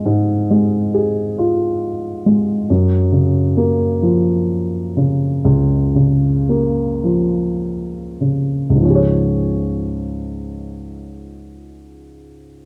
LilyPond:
\new Staff \with { instrumentName = "Grand piano" } { \clef bass \time 6/8 \key des \major \tempo 4. = 41 <aes, aes f'>8 aes8 aes'8 f'4 aes8 | ges,8 des8 bes8 f4 des8 | des,8 des8 bes8 f4 des8 | <des, aes, f des' aes' des''>2. | }